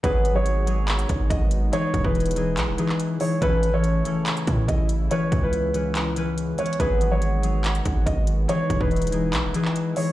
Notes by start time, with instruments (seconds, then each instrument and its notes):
0.03 808-style bass G#1, harp F#3 B3 G#4, analog synth pad G#3 B3 D#4 F#4, grand piano B4, kick, closed hi-hat
0.25 closed hi-hat
0.35 harp F#3 B3 G#4, grand piano C#5
0.46 closed hi-hat
0.66 harp F#3 B3 G#4, closed hi-hat
0.88 clap, closed hi-hat
0.99 closed hi-hat
1.09 808-style bass G#1, kick, closed hi-hat
1.30 808-style bass G#1, grand piano D#5, kick, closed hi-hat
1.51 closed hi-hat
1.72 harp E3 D#4 G#4, analog synth pad E4, grand piano C#5, closed hi-hat
1.94 808-style bass E1, kick, closed hi-hat
2.04 808-style bass E1, harp E3 D#4 G#4, grand piano B4, kick
2.15 closed hi-hat
2.20 closed hi-hat
2.26 closed hi-hat
2.31 closed hi-hat
2.36 harp E3 D#4 G#4, closed hi-hat
2.57 808-style bass B1, clap, closed hi-hat
2.68 808-style bass E1
2.78 harp E3 D#4 G#4, closed hi-hat
2.89 clap
3.00 closed hi-hat
3.20 harp E3 D#4 G#4, grand piano C#5, open hi-hat
3.41 808-style bass A1, analog synth pad C#3 E3 A3, harp E3 C#4 A4, grand piano B4, kick, closed hi-hat
3.63 closed hi-hat
3.72 harp E3 C#4 A4, grand piano C#5
3.84 closed hi-hat
4.04 harp E3 C#4 A4, closed hi-hat
4.26 clap, closed hi-hat
4.37 closed hi-hat
4.47 808-style bass A2, kick, closed hi-hat
4.68 808-style bass A1, grand piano D#5, kick, closed hi-hat
4.89 closed hi-hat
5.10 harp E3 C#4 B4, analog synth pad G#3 B3, grand piano C#5, closed hi-hat
5.32 808-style bass C#2, kick, closed hi-hat
5.42 harp E3 C#4 B4, grand piano B4
5.53 closed hi-hat
5.73 harp E3 C#4 B4, closed hi-hat
5.95 clap, closed hi-hat
6.16 harp E3 C#4 B4, closed hi-hat
6.38 closed hi-hat
6.58 harp E3 C#4 B4, grand piano C#5, closed hi-hat, open hi-hat
6.66 closed hi-hat
6.73 closed hi-hat
6.79 808-style bass G#1, analog synth pad D#3 F#4, harp F#3 B3 G#4, grand piano B4, kick, closed hi-hat
7.01 closed hi-hat
7.11 harp F#3 B3 G#4, grand piano C#5
7.22 closed hi-hat
7.42 harp F#3 B3 G#4, closed hi-hat
7.64 clap, closed hi-hat
7.75 closed hi-hat
7.85 808-style bass G#1, kick, closed hi-hat
8.06 808-style bass G#1, grand piano D#5, kick, closed hi-hat
8.27 closed hi-hat
8.48 harp E3 D#4 G#4, analog synth pad D#4 E4, grand piano C#5, closed hi-hat
8.70 808-style bass E1, kick, closed hi-hat
8.80 808-style bass E1, harp E3 D#4 G#4, grand piano B4, kick
8.91 closed hi-hat
8.96 closed hi-hat
9.02 closed hi-hat
9.07 closed hi-hat
9.12 harp E3 D#4 G#4, closed hi-hat
9.33 808-style bass B1, clap, closed hi-hat
9.44 808-style bass E1
9.54 harp E3 D#4 G#4, closed hi-hat
9.65 clap
9.76 closed hi-hat
9.96 harp E3 D#4 G#4, grand piano C#5, open hi-hat